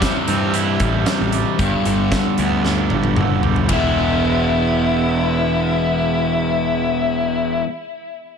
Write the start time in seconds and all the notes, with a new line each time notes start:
Already playing: C3 E3 G3 C4 E4
0.01 C3, kick, snare, closed hi-hat
0.28 G2 C4, closed hi-hat
0.54 E4, closed hi-hat
0.80 A1 G3, kick, closed hi-hat
1.06 C3, snare, closed hi-hat
1.21 A1
1.32 G3, closed hi-hat
1.59 G1 G2 D3 G3 B3 D4 G4, kick, closed hi-hat
1.85 G1 D3, closed hi-hat
2.12 D3, kick, snare, closed hi-hat
2.38 D2 B3, closed hi-hat
2.64 D4, snare
2.90 G1 G3, high tom
3.04 high tom
3.16 F#1 D3, mid tom
3.43 E1 G3, floor tom
3.56 floor tom
3.68 E1 E2 B2 E3 G#3 B3 E4, kick, ride
3.73 G#3 B3 E4